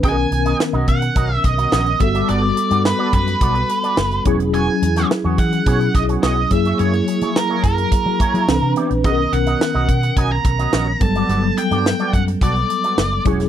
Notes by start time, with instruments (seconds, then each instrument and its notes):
0.03 fingered electric bass B1, tine electric piano D#3 B3 C#4 G#4, clean electric guitar C#4 F#4 A#4 D#5, lead electric guitar G#5, kick, closed hi-hat
0.11 tine electric piano A#4
0.17 muted clean electric guitar stroke
0.31 fingered electric bass B1, muted clean electric guitar stroke, closed hi-hat
0.45 clean electric guitar C#4 F#4 A#4 D#5, closed hi-hat
0.60 muted clean electric guitar stroke, snare
0.73 fingered electric bass B1, clean electric guitar C#4 F#4 A#4 D#5
0.87 fingered electric bass B2, lead electric guitar F#5, muted clean electric guitar stroke, kick, closed hi-hat
1.02 muted clean electric guitar stroke, closed hi-hat
1.16 fingered electric bass B1, clean electric guitar C#4 F#4 A#4 D#5, kick, closed hi-hat
1.30 lead electric guitar E5, muted clean electric guitar stroke
1.44 fingered electric bass B1, lead electric guitar D#5, muted clean electric guitar stroke, kick, closed hi-hat
1.58 clean electric guitar C#4 F#4 A#4 D#5, closed hi-hat
1.72 fingered electric bass A#1, clean electric guitar C#4 F#4 A#4 D#5, lead electric guitar D#5, snare
1.86 muted clean electric guitar stroke, closed hi-hat
1.99 fingered electric bass G1, tine electric piano G3 B3 F#4 A4, lead electric guitar E5, muted clean electric guitar stroke, kick, closed hi-hat
2.14 clean electric guitar B3 F#4 A4 D5, closed hi-hat
2.28 fingered electric bass G1, clean electric guitar B3 F#4 A4 D5, lead electric guitar D5, closed hi-hat
2.42 muted clean electric guitar stroke
2.56 muted clean electric guitar stroke, closed hi-hat
2.71 fingered electric bass G2, clean electric guitar B3 F#4 A4 D5, closed hi-hat
2.85 lead electric guitar B4, muted clean electric guitar stroke, snare
2.99 clean electric guitar B3 F#4 A4 D5
3.13 fingered electric bass F#2, lead electric guitar B4, muted clean electric guitar stroke, kick, closed hi-hat
3.27 muted clean electric guitar stroke, closed hi-hat
3.41 fingered electric bass B1, clean electric guitar B3 F#4 A4 D5, kick, closed hi-hat
3.55 muted clean electric guitar stroke, closed hi-hat
3.69 muted clean electric guitar stroke, closed hi-hat
3.83 clean electric guitar B3 F#4 A4 D5, closed hi-hat
3.97 fingered electric bass F#1, snare
4.11 muted clean electric guitar stroke, closed hi-hat
4.25 fingered electric bass E1, tine electric piano F#3 C#4 E4 G#4, clean electric guitar B3 F#4 G#4 C#5, kick, closed hi-hat
4.40 muted clean electric guitar stroke, closed hi-hat
4.54 clean electric guitar B3 F#4 G#4 C#5, lead electric guitar G#5, closed hi-hat
4.68 muted clean electric guitar stroke
4.82 fingered electric bass E2, muted clean electric guitar stroke, closed hi-hat
4.96 clean electric guitar B3 F#4 G#4 C#5, snare, closed hi-hat
5.10 muted clean electric guitar stroke, snare
5.24 fingered electric bass E2, clean electric guitar B3 F#4 G#4 C#5
5.38 fingered electric bass E3, lead electric guitar F#5, muted clean electric guitar stroke, kick, closed hi-hat
5.52 muted clean electric guitar stroke, closed hi-hat
5.66 fingered electric bass B2, tine electric piano F#3 C#4 E4 G#4, clean electric guitar B3 F#4 G#4 C#5, kick, closed hi-hat
5.80 muted clean electric guitar stroke, closed hi-hat
5.95 fingered electric bass B1, lead electric guitar D#5, muted clean electric guitar stroke, kick, closed hi-hat
6.09 clean electric guitar B3 F#4 G#4 C#5, closed hi-hat
6.23 fingered electric bass B1, clean electric guitar B3 F#4 G#4 C#5, lead electric guitar D#5, snare
6.37 muted clean electric guitar stroke
6.50 fingered electric bass F#2, tine electric piano F#3 A#3 E4 G#4, lead electric guitar E5, muted clean electric guitar stroke, kick, closed hi-hat
6.65 clean electric guitar A#3 E4 G#4 C#5, closed hi-hat
6.79 fingered electric bass F#2, clean electric guitar A#3 E4 G#4 C#5, lead electric guitar C#5, closed hi-hat
6.93 muted clean electric guitar stroke, closed hi-hat
7.07 muted clean electric guitar stroke, closed hi-hat
7.21 fingered electric bass F#3, clean electric guitar A#3 E4 G#4 C#5, closed hi-hat
7.36 lead electric guitar A#4, muted clean electric guitar stroke, snare
7.50 clean electric guitar A#3 E4 G#4 C#5
7.63 fingered electric bass F#2, lead electric guitar A#4, muted clean electric guitar stroke, kick, closed hi-hat
7.78 muted clean electric guitar stroke, closed hi-hat
7.92 muted clean electric guitar stroke, kick, closed hi-hat
8.06 fingered electric bass F#3, muted clean electric guitar stroke
8.20 clean electric guitar A#3 E4 G#4 C#5, kick, closed hi-hat
8.34 fingered electric bass F#3, clean electric guitar A#3 E4 G#4 C#5, closed hi-hat
8.48 fingered electric bass C2, tine electric piano E3 C4 D4 A4, snare
8.56 tine electric piano B4
8.62 fingered electric bass C3, muted clean electric guitar stroke
8.76 clean electric guitar B3 E4 G4 D5, closed hi-hat
8.90 fingered electric bass A#1, muted clean electric guitar stroke, closed hi-hat
9.03 fingered electric bass B1, tine electric piano D#3 B3 C#4 G#4, clean electric guitar C#4 F#4 A#4 D#5, lead electric guitar D#5, kick, closed hi-hat
9.12 tine electric piano A#4
9.18 muted clean electric guitar stroke
9.32 fingered electric bass B1, lead electric guitar F#5, muted clean electric guitar stroke, closed hi-hat
9.46 clean electric guitar C#4 F#4 A#4 D#5, closed hi-hat
9.61 muted clean electric guitar stroke, snare
9.74 fingered electric bass B1, clean electric guitar C#4 F#4 A#4 D#5
9.88 fingered electric bass B2, muted clean electric guitar stroke, kick, closed hi-hat
10.03 muted clean electric guitar stroke, closed hi-hat
10.17 fingered electric bass B1, clean electric guitar C#4 F#4 A#4 D#5, lead electric guitar G#5, kick, closed hi-hat
10.31 lead electric guitar A#5, muted clean electric guitar stroke
10.45 fingered electric bass B1, lead electric guitar A#5, muted clean electric guitar stroke, kick, closed hi-hat
10.59 clean electric guitar C#4 F#4 A#4 D#5, closed hi-hat
10.73 fingered electric bass A#1, clean electric guitar C#4 F#4 A#4 D#5, snare
10.88 muted clean electric guitar stroke
11.00 fingered electric bass G1, tine electric piano F#3 G3 B3 A4, lead electric guitar A5, muted clean electric guitar stroke, kick, closed hi-hat
11.15 clean electric guitar B3 F#4 A4 D5, closed hi-hat
11.29 fingered electric bass G1, clean electric guitar B3 F#4 A4 D5, closed hi-hat
11.43 muted clean electric guitar stroke
11.57 lead electric guitar G5, muted clean electric guitar stroke, closed hi-hat
11.71 fingered electric bass G2, clean electric guitar B3 F#4 A4 D5, closed hi-hat
11.85 muted clean electric guitar stroke, snare
11.99 clean electric guitar B3 F#4 A4 D5, closed hi-hat
12.13 fingered electric bass F#2, lead electric guitar F#5, muted clean electric guitar stroke, kick, closed hi-hat
12.28 muted clean electric guitar stroke, closed hi-hat
12.41 fingered electric bass B1, clean electric guitar B3 F#4 A4 D5, lead electric guitar D5, kick, closed hi-hat
12.56 muted clean electric guitar stroke, closed hi-hat
12.70 muted clean electric guitar stroke, closed hi-hat
12.84 clean electric guitar B3 F#4 A4 D5, closed hi-hat
12.98 fingered electric bass F#1, muted clean electric guitar stroke, snare
13.12 muted clean electric guitar stroke
13.25 fingered electric bass E1, tine electric piano F#3 C#4 E4 G#4, clean electric guitar C#4 F#4 G#4 C#5, kick, closed hi-hat
13.40 muted clean electric guitar stroke, snare, closed hi-hat